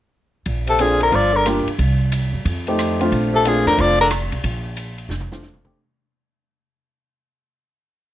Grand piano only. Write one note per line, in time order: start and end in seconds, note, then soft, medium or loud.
0.79 1.13 C4 medium
0.79 1.13 D4 medium
0.79 1.13 F4 medium
0.79 1.13 A4 medium
1.46 1.66 A#3 medium
1.46 1.66 D4 medium
1.46 1.66 F4 medium
1.46 1.66 G4 medium
2.68 2.98 A3 medium
2.68 2.98 C4 medium
2.68 2.99 D#4 medium
2.68 2.99 G4 medium
3.01 3.43 A3 medium
3.01 3.43 C4 medium
3.01 3.43 D4 medium
3.01 3.43 F4 medium
3.46 3.95 A3 medium
3.46 3.96 C4 medium
3.46 3.95 D4 medium
3.46 3.96 F4 medium
5.31 5.62 A3 medium
5.31 5.62 C4 medium
5.31 5.62 D4 medium
5.31 5.63 F4 medium
5.65 5.76 A3 medium
5.65 5.76 C4 medium
5.65 5.76 D4 medium
5.65 5.76 G4 medium